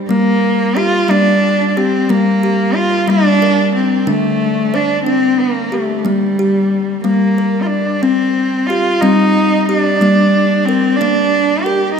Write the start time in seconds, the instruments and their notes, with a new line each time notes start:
0.09 kalimba G3 A#3, cello A#3
0.77 cello F4, kalimba G4
1.08 kalimba G3 A#3, cello D4
1.68 cello D4
1.77 cello C4, kalimba G4
2.09 kalimba G3 A#3, cello A#3
2.43 kalimba G4
2.76 cello F4
3.08 kalimba G3 A#3, cello D4
3.42 kalimba A#4
3.76 cello C4
4.07 kalimba D3 D4, cello A3
4.74 cello D4, kalimba C5
5.05 cello C4, kalimba D4
5.40 cello A#3
5.72 cello A3, kalimba G4
6.05 kalimba G3 A#3, cello G3
6.39 kalimba G4
7.04 kalimba G3 A#3, cello A#3
7.38 kalimba A#4
7.63 cello F4
7.67 cello D4
8.02 cello C4, kalimba C4
8.67 cello F4, kalimba G4
9.01 kalimba G3 C4, cello D#4
9.66 cello D4, kalimba G4
10.01 kalimba G3 A#3
10.65 cello C4, kalimba A#4
10.96 cello D4
11.01 kalimba A#3 D4
11.62 cello G4
11.66 kalimba A#4
11.95 cello D#4